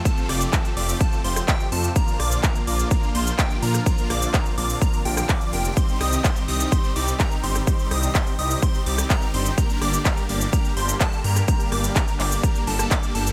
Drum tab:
HH |x-oxxxoox-oxx-ox|x-oxxxoxx-oxx-ox|xxoxxxooxxoxxxox|x-oxxxoxx-oxx-ox|
SH |xx-xxx-xxx-xxx-x|xx-xxx-xxx-xxx-x|xx-xxx-xxx-xxx-x|xx-xxx-xxx-xxx-x|
CP |----x-------x---|----x-------x---|----x-------x---|----x-------x---|
SD |--r--------r----|--r------------r|--r--------r----|--r------------r|
BD |o---o---o---o---|o---o---o---o---|o---o---o---o---|o---o---o---o---|

HH |x-oxxxoox-oxx-ox|x-oxxxoxx-oxx-ox|xxoxxxoox-oxxxox|
SH |xx-xxx-xxx-xxx-x|xx-xxx-xxx-xxx-x|xx-xxx-xxx-xxx-x|
CP |----x-------x---|----x-------x---|----x-x-----x---|
SD |--r--------r----|--r------------r|--r--------r----|
BD |o---o---o---o---|o---o---o---o---|o---o---o---o---|